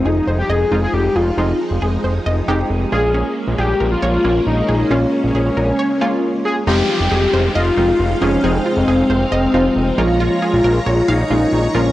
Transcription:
Already playing: string machine F3 G#3 D#4, analog polysynth G#3 C4 D#4 F4
0.05 analog synth bass F1, analog synth lead D#4, synth pluck G#4
0.27 analog synth bass F1, synth pluck C5
0.39 analog synth lead G4
0.49 analog synth bass F1, analog synth lead G#4, synth pluck D#5
0.72 analog synth bass F1, analog polysynth G#3 C4 D#4 F4, synth pluck D#4
0.83 analog synth lead G#4
0.94 analog synth bass F1, analog synth lead G4
1.16 analog synth bass F1, analog synth lead F4, synth pluck G#4
1.38 analog synth bass F1, analog polysynth G#3 C4 D#4 F4, synth pluck D#4
1.71 analog synth bass F1
1.82 analog synth bass F1, synth pluck G#4
2.04 analog synth bass F1, synth pluck C5
2.26 analog synth bass F1, synth pluck D#5
2.48 analog synth bass F1, analog polysynth G#3 C4 D#4 G4, synth pluck D#4
2.70 analog synth bass F1
2.92 analog synth bass A#1, string machine G#3 A#3 C#4, analog polysynth G#3 A#3 C#4 F4, analog synth lead G#4, synth pluck G#4
3.14 synth pluck C#4
3.47 analog synth bass A#1
3.58 analog synth bass A#1, analog synth lead G4, synth pluck G#4
3.80 analog synth bass A#1, synth pluck A#4
3.92 analog synth lead F4
4.02 analog synth bass A#1, synth pluck C#5
4.24 analog synth bass A#1, analog polysynth G#3 A#3 C#4 F4, synth pluck C#4
4.47 analog synth bass A#1, analog synth lead D#4
4.69 analog synth bass A#1, synth pluck G#4
4.91 analog synth bass A#1, analog polysynth G#3 A#3 C#4 F4, synth pluck C#4, analog synth lead C#4
5.24 analog synth bass A#1
5.35 analog synth bass A#1, analog synth lead C#4, synth pluck G#4
5.57 analog synth bass A#1, synth pluck A#4
5.79 synth pluck C#5
6.01 analog polysynth G#3 A#3 C#4 F4, synth pluck C#4
6.45 synth pluck G#4, analog synth lead G#4
6.67 analog synth bass F1, analog polysynth F3 G#3 C4 D#4 F4, string machine G#3 D#4 F5, synth pluck D#4, analog synth lead G4, downlifter
6.89 synth pluck F4
7.00 analog synth bass F1
7.11 analog synth bass F1, synth pluck G#4
7.33 analog synth bass F1, synth pluck C5
7.55 analog synth bass F1, analog synth lead F4, synth pluck D#5
7.77 analog synth bass F1, analog polysynth F3 G#3 C4 D#4 F4, synth pluck D#4
8.00 analog synth bass F1
8.22 analog synth bass F1, analog polysynth F3 G#3 C4 D#4 F4, analog synth lead C#4, synth pluck G#4
8.44 analog synth bass F1, analog polysynth F3 G#3 C4 D#4 G#4, analog synth lead C4, synth pluck D#4
8.66 synth pluck F4
8.77 analog synth bass F1
8.88 analog synth bass F1, synth pluck G#4
9.10 analog synth bass F1, synth pluck C5
9.32 analog synth bass F1, synth pluck D#5
9.54 analog synth bass F1, analog polysynth F3 G#3 C4 D#4 F4, synth pluck D#4
9.76 analog synth bass F1
9.98 analog synth bass A#1, analog polysynth F3 G#3 A#3 C#4 F4, analog synth lead F4, synth pluck A#4, string machine C#5 A#5
10.20 synth pluck F4
10.42 synth pluck G#4
10.53 analog synth bass A#1
10.64 analog synth bass A#1, synth pluck A#4
10.86 analog synth bass A#1, synth pluck C#5
11.01 analog synth lead F4
11.08 analog synth bass A#1, analog synth lead D#4, synth pluck F5
11.30 analog synth bass A#1, analog polysynth F3 G#3 A#3 C#4 F4, synth pluck F4
11.53 analog synth bass A#1
11.75 analog synth bass A#1, analog polysynth F3 G#3 A#3 C#4 F4, analog synth lead C#4, synth pluck A#4

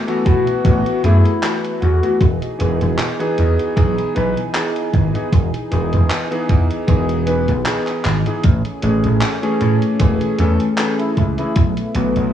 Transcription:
Already playing: analog synth pad A3 B3 E4
0.07 electric grand piano E3 A3 B3 F#4, closed hi-hat
0.26 slap bass B2, flugelhorn F#4, kick, closed hi-hat
0.47 closed hi-hat
0.64 slap bass A1, electric grand piano E3 A3 B3 F#4, kick, closed hi-hat
0.86 closed hi-hat
1.03 slap bass F#2, electric grand piano E3 A3 B3 G#4, flugelhorn E4, closed hi-hat
1.25 closed hi-hat
1.42 electric grand piano E3 A3 B3 F#4, clap, closed hi-hat
1.65 closed hi-hat
1.82 slap bass E2, flugelhorn F#4, closed hi-hat
2.03 electric grand piano E3 A3 B3 F#4, closed hi-hat
2.21 slap bass E1, analog synth pad E3 D#4 G#4, kick, closed hi-hat
2.42 closed hi-hat
2.59 slap bass E1, electric grand piano E3 B3 D#4 G#4, closed hi-hat
2.81 slap bass E1, closed hi-hat
2.99 clap, closed hi-hat
3.19 electric grand piano E3 B3 D#4 G#4, closed hi-hat
3.38 slap bass E2, closed hi-hat
3.59 closed hi-hat
3.76 slap bass B1, electric grand piano E3 B3 D#4 G#4, kick, closed hi-hat
3.98 closed hi-hat
4.15 slap bass B1, electric grand piano E3 B3 D#4 B4, closed hi-hat
4.37 closed hi-hat
4.54 electric grand piano E3 B3 D#4 G#4, clap, closed hi-hat
4.76 closed hi-hat
4.94 slap bass G#1, kick, closed hi-hat
5.14 electric grand piano E3 B3 D#4 G#4, closed hi-hat
5.33 slap bass E1, kick, closed hi-hat
5.54 closed hi-hat
5.71 slap bass E1, electric grand piano E3 B3 D#4 G#4, closed hi-hat
5.93 slap bass E1, closed hi-hat
6.11 clap, closed hi-hat
6.31 electric grand piano E3 B3 D#4 G#4, closed hi-hat
6.49 slap bass E2, kick, closed hi-hat
6.71 closed hi-hat
6.88 slap bass E1, electric grand piano E3 B3 D#4 G#4, kick, closed hi-hat
7.09 closed hi-hat
7.26 electric grand piano E3 B3 D#4 B4, closed hi-hat
7.48 slap bass B1, closed hi-hat
7.66 electric grand piano E3 B3 D#4 G#4, clap, closed hi-hat
7.87 clap, closed hi-hat
8.05 slap bass G#1, clap, closed hi-hat
8.26 electric grand piano E3 B3 D#4 G#4, closed hi-hat
8.44 slap bass A1, analog synth pad A3 C#4 G#4, kick, closed hi-hat
8.65 closed hi-hat
8.83 slap bass A1, electric grand piano E3 A3 C#4 G#4, closed hi-hat
9.04 slap bass A1, closed hi-hat
9.22 clap, closed hi-hat
9.42 electric grand piano E3 A3 C#4 G#4, flugelhorn C#4, closed hi-hat
9.61 slap bass A2, closed hi-hat
9.82 closed hi-hat
10.00 slap bass E1, electric grand piano E3 A3 C#4 G#4, kick, closed hi-hat
10.21 closed hi-hat
10.39 slap bass E2, electric grand piano E3 A3 C#4 A4, closed hi-hat
10.60 closed hi-hat
10.78 electric grand piano E3 A3 C#4 G#4, clap, closed hi-hat
10.99 flugelhorn E4, closed hi-hat
11.17 slap bass C#2, flugelhorn E4, kick, closed hi-hat
11.38 electric grand piano E3 A3 C#4 G#4, flugelhorn E4, closed hi-hat
11.55 slap bass B1, analog synth pad B3 E4, kick, closed hi-hat
11.77 closed hi-hat
11.94 slap bass B1, electric grand piano E3 A3 B3 F#4, closed hi-hat
12.16 slap bass B1, closed hi-hat

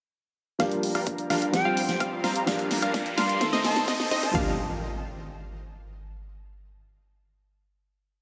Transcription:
0.59 detuned saw bass G1, grand piano F3 A#3 D4 G4, supersaw synth G3 D4 F4 A#4 F5, analog synth pad G4 D5 F5 A#5, synth pluck F5, kick, snare, closed hi-hat, riser
0.72 closed hi-hat
0.83 open hi-hat
0.95 detuned saw bass G2, supersaw synth G3 D4 F4 A#4 F5, synth pluck F5, open hi-hat
1.07 kick, closed hi-hat
1.18 closed hi-hat
1.30 detuned saw bass G2, supersaw synth G3 D4 F4 A#4 F5, synth pluck F5, snare, open hi-hat
1.42 closed hi-hat
1.52 grand piano F3 G3 C4 G4, analog synth pad C5 C6, flute G5, kick, snare, closed hi-hat
1.65 detuned saw bass G1, supersaw synth G3 C4 F4 C5 F5, synth pluck F5
1.77 open hi-hat
1.89 snare, closed hi-hat
2.00 detuned saw bass G2, supersaw synth G3 C4 F4 C5 F5, synth pluck F5, kick, closed hi-hat
2.24 detuned saw bass G1, supersaw synth G3 C4 F4 C5 F5, synth pluck F5, flute A#5, snare, open hi-hat
2.36 flute A#5, closed hi-hat
2.46 detuned saw bass G1, grand piano F3 A#3 D4 G4, supersaw synth G3 D4 F4 A#4 F5, analog synth pad D5 F5 A#5, synth pluck F5, kick, snare, closed hi-hat
2.59 closed hi-hat
2.71 snare, open hi-hat
2.82 detuned saw bass G2, supersaw synth G3 D4 F4 A#4 F5, synth pluck F5, closed hi-hat
2.94 kick, snare, closed hi-hat
3.06 closed hi-hat
3.18 detuned saw bass G2, supersaw synth G3 D4 F4 A#4 F5, synth pluck F5, flute C6, snare, open hi-hat
3.29 closed hi-hat
3.40 grand piano D#3 A3 C4 A4, analog synth pad A4 C5 D#5 C6, kick, snare, closed hi-hat
3.53 detuned saw bass G1, supersaw synth A3 C4 D#4 C5 D#5, synth pluck D#5, snare
3.65 flute A5, snare, open hi-hat
3.76 snare, closed hi-hat
3.88 detuned saw bass G1, supersaw synth A3 C4 D#4 C5 D#5, synth pluck D#5, kick, snare, open hi-hat
4.00 snare
4.11 detuned saw bass G2, supersaw synth A3 C4 D#4 C5 D#5, synth pluck D#5, snare, open hi-hat
4.23 flute A5, snare, closed hi-hat
4.33 detuned saw bass G1, grand piano F3 A#3 D4 G4, supersaw synth G3 D4 F4 A#4 F5, analog synth pad F4 A#4 D5 G5, synth pluck F5, kick, floor tom, impact

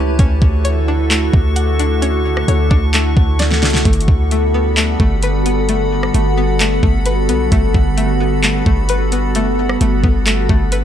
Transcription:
Already playing: 808-style bass C#2, ambient pad E3 A3 E4 G4 B4, synth pluck A3 C#4 C#5, synth texture G4 C#5 A5
0.19 808-style bass D2, ambient pad D3 A3 F#4 A4, synth pluck C#4, synth texture D4 F#4 C#6, kick, closed hi-hat
0.42 808-style bass D2, kick
0.65 synth pluck C#5, closed hi-hat
0.88 synth pluck D4
1.10 synth pluck A3, clap, closed hi-hat
1.33 808-style bass D2, kick
1.56 synth pluck F#5, closed hi-hat
1.79 synth pluck D4, closed hi-hat
2.02 synth pluck C#4, closed hi-hat
2.37 cross-stick
2.48 808-style bass D2, synth pluck C#5, closed hi-hat
2.70 808-style bass D2, synth pluck D4, kick
2.94 synth pluck A3, clap, closed hi-hat
3.17 808-style bass D2, kick
3.39 synth pluck D5, snare, closed hi-hat
3.51 snare
3.62 808-style bass C#2, synth pluck D4, snare, closed hi-hat
3.70 snare, closed hi-hat
3.78 closed hi-hat
3.85 808-style bass G1, ambient pad G3 B3, synth pluck A3, synth texture A4 F#5 B5, kick, closed hi-hat
3.93 closed hi-hat
4.01 closed hi-hat
4.08 808-style bass D2, kick
4.31 synth pluck A3, closed hi-hat
4.54 synth pluck B3
4.77 synth pluck A3, clap, closed hi-hat
5.00 808-style bass G1, synth pluck A3, kick
5.23 synth pluck B4, closed hi-hat
5.46 synth pluck B3, closed hi-hat
5.69 synth pluck A3, closed hi-hat
6.03 cross-stick
6.14 808-style bass G1, synth pluck A3, closed hi-hat
6.38 synth pluck B3
6.60 synth pluck A3, clap, closed hi-hat
6.83 808-style bass G1, synth pluck A3, kick
7.06 synth pluck B4, closed hi-hat
7.29 808-style bass B1, synth pluck B3, closed hi-hat
7.52 808-style bass G1, synth pluck A3, kick, closed hi-hat
7.75 808-style bass G1, kick
7.97 synth pluck A3, closed hi-hat
8.20 synth pluck B3
8.43 synth pluck A3, clap, closed hi-hat
8.66 808-style bass G1, synth pluck A3, kick
8.89 synth pluck B4, closed hi-hat
9.12 synth pluck B3, closed hi-hat
9.35 synth pluck A3, closed hi-hat
9.69 cross-stick
9.81 808-style bass G1, synth pluck A3, closed hi-hat
10.04 808-style bass G1, synth pluck B3, kick
10.26 synth pluck A3, clap, closed hi-hat
10.49 808-style bass G1, synth pluck A3, kick
10.72 synth pluck B4, closed hi-hat

